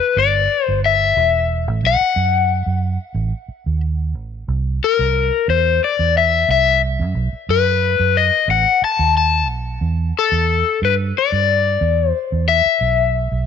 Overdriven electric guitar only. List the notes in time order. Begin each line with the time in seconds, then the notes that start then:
Already playing: B4
0.18 D5
0.64 C5
0.86 E5
1.87 F#5
3.13 E5
4.84 A#4
5.50 C5
5.84 D5
6.17 E5
6.51 E5
7.50 B4
8.17 D#5
8.51 F#5
8.84 A5
9.17 A5
10.19 A4
10.85 B4
11.18 D5
12.09 C5
12.48 E5